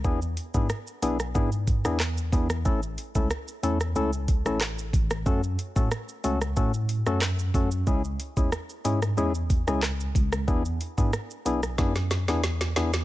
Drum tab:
HH |--x---x---x---x-|--x---x---x---x-|--x---x---x---x-|--x---x---x---x-|
SH |xxxxxxxxxxxxxxxx|xxxxxxxxxxxxxxxx|xxxxxxxxxxxxxxxx|xxxxxxxxxxxxxxxx|
CP |------------x---|------------x---|------------x---|------------x---|
SD |----r--r---rr--r|----r--r---rr--r|----r--r---rr---|----r--r---rr--r|
BD |o--o----o-o---o-|o--o------o---o-|o--o----o-----o-|o--o------o---o-|

HH |--x---x---x---x-|
SH |xxxxxxxxxxxxxxxx|
CP |----------------|
SD |----r--roooooooo|
BD |o--o----o-------|